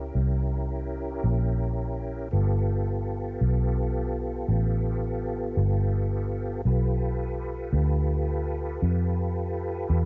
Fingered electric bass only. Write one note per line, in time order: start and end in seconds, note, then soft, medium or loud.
0.00 0.13 C#2 medium
0.15 1.21 C2 medium
1.24 2.29 A#1 medium
2.33 3.38 G1 medium
3.41 4.46 B1 medium
4.48 5.54 A1 medium
5.57 6.63 G1 medium
6.65 7.71 B1 medium
7.73 8.79 D2 medium
8.82 9.88 F2 medium
9.90 10.05 E2 medium